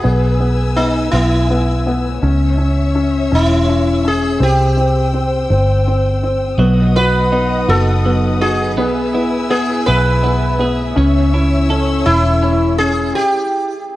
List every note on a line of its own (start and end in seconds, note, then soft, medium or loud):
0.00 0.38 B3 medium
0.00 0.79 G#4 medium
0.00 2.19 B4 medium
0.04 1.09 B1 medium
0.04 2.20 G#5 medium
0.04 2.20 E6 medium
0.40 0.75 B3 soft
0.76 1.12 B3 soft
0.76 1.11 D#4 medium
1.12 2.18 B1 medium
1.12 1.49 B3 soft
1.12 1.90 E4 medium
1.50 1.85 B3 soft
1.87 2.22 B3 soft
2.22 3.28 C#2 medium
2.22 2.56 C#4 medium
2.22 4.39 C#5 medium
2.22 4.39 E5 medium
2.22 6.55 E6 medium
2.58 2.93 C#4 soft
2.95 3.30 C#4 soft
3.31 4.37 E1 medium
3.31 3.67 C#4 soft
3.31 4.08 E4 medium
3.68 4.03 C#4 soft
4.04 4.40 C#4 soft
4.04 4.43 G#4 medium
4.40 5.46 C2 medium
4.40 4.75 C4 medium
4.40 5.47 G4 medium
4.40 6.57 C5 medium
4.40 6.57 G5 medium
4.77 5.12 C4 soft
5.13 5.48 C4 medium
5.50 6.56 G1 medium
5.50 5.86 C4 soft
5.87 6.22 C4 soft
6.23 6.59 C4 soft
6.58 7.64 B1 medium
6.58 8.04 F#3 medium
6.58 7.31 B3 medium
6.58 10.93 B4 medium
6.58 8.76 D#5 medium
6.58 8.76 F#5 medium
6.58 8.76 D#6 medium
6.96 7.68 B3 soft
6.96 7.67 F#4 soft
6.96 7.71 B4 medium
7.32 8.04 B3 soft
7.32 8.40 D#4 medium
7.68 8.78 F#1 medium
7.68 8.77 B3 soft
7.68 8.40 F#4 soft
7.68 8.38 A4 medium
8.05 8.86 F#3 soft
8.05 8.76 B3 soft
8.41 8.85 D#4 medium
8.41 8.77 F#4 soft
8.41 9.49 G#4 medium
8.77 9.84 B1 medium
8.77 10.22 B3 medium
8.77 9.12 B3 medium
8.77 13.12 E5 medium
8.77 10.95 G#5 soft
8.77 10.95 E6 medium
9.14 9.48 B3 soft
9.14 9.87 E4 medium
9.50 9.85 B3 medium
9.50 10.59 G#4 medium
9.50 9.89 G#4 medium
9.86 10.93 B1 medium
9.86 10.21 B3 soft
9.86 11.33 E4 soft
9.86 10.65 B4 medium
10.23 10.57 B3 soft
10.23 10.97 B3 medium
10.59 10.95 B3 soft
10.59 11.04 G#4 medium
10.96 12.02 C#2 medium
10.96 11.32 C#4 medium
10.96 12.41 C#4 medium
10.96 13.13 C#5 medium
10.96 13.13 E6 medium
11.34 11.68 C#4 soft
11.34 12.06 E4 medium
11.70 12.04 C#4 medium
11.70 12.79 A4 medium
12.06 13.12 E1 medium
12.06 12.41 C#4 medium
12.06 12.78 E4 medium
12.06 13.73 E4 soft
12.42 12.78 C#4 soft
12.42 13.23 C#4 medium
12.78 13.15 C#4 soft
12.78 13.13 G#4 medium
13.15 13.96 G4 medium